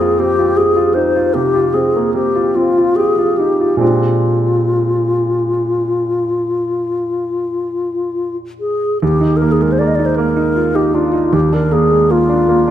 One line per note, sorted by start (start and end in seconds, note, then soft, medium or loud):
0.00 1.30 F2 soft
0.00 1.96 A#3 soft
0.00 0.19 C4 soft
0.00 0.38 F4 soft
0.00 0.21 G#4 medium
0.19 0.50 C4 soft
0.19 0.58 G4 medium
0.38 0.69 F4 soft
0.57 0.77 G4 soft
0.57 0.96 G#4 medium
0.76 1.07 F4 soft
0.94 1.15 D#4 soft
0.94 1.36 C5 medium
1.16 1.47 F4 soft
1.34 1.67 C3 soft
1.34 1.75 G4 medium
1.55 1.87 F4 soft
1.74 2.07 C4 soft
1.74 2.14 G#4 medium
1.96 2.15 A#3 soft
2.14 2.47 C4 soft
2.14 2.57 G4 medium
2.35 2.68 F4 soft
2.55 2.89 C4 soft
2.55 2.97 F4 soft
2.77 3.10 F4 soft
2.96 3.18 G4 soft
2.96 3.39 G#4 medium
3.18 3.51 F4 soft
3.37 3.60 D#4 soft
3.37 3.80 G4 soft
3.61 3.82 F4 soft
3.77 8.95 A#2 soft
3.77 8.96 G#3 soft
3.77 8.96 C4 soft
3.77 8.97 D4 soft
3.77 8.36 F4 soft
3.81 8.97 G4 soft
8.60 8.99 G#4 soft
9.02 11.30 D#2 soft
9.02 9.38 G4 medium
9.21 9.52 D#4 soft
9.37 9.53 A#4 medium
9.41 9.72 A#3 soft
9.52 9.64 G#4 soft
9.61 9.80 G#3 soft
9.61 9.74 A#4 soft
9.72 9.80 C5 soft
9.79 10.11 A#3 soft
9.79 9.89 D5 soft
9.87 9.97 D#5 soft
9.96 10.29 D#4 soft
9.96 10.07 D5 soft
10.06 10.17 C5 soft
10.16 10.48 A#3 soft
10.16 10.77 A#4 medium
10.37 10.68 D#4 soft
10.56 10.75 F4 soft
10.75 11.06 D#4 soft
10.75 10.96 G4 medium
10.94 11.14 D4 soft
10.94 11.35 F4 medium
11.13 11.33 D#4 soft
11.33 12.71 D#2 soft
11.33 11.56 G4 medium
11.52 11.84 D4 soft
11.52 11.74 A#4 medium
11.71 12.03 A#3 soft
11.71 12.13 G#4 medium
11.91 12.11 G#3 soft
12.10 12.42 A#3 soft
12.10 12.71 F4 medium
12.29 12.61 D4 soft
12.49 12.71 A#3 soft
12.67 12.71 D4 soft